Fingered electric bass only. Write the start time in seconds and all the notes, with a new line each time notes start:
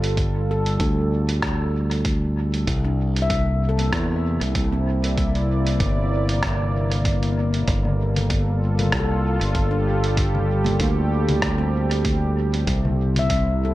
Already playing: G1
0.80 D2
2.67 C2
3.93 E2
4.41 C2
5.80 G1
7.68 G1
8.93 C2
9.41 G1
10.80 D2
12.67 C2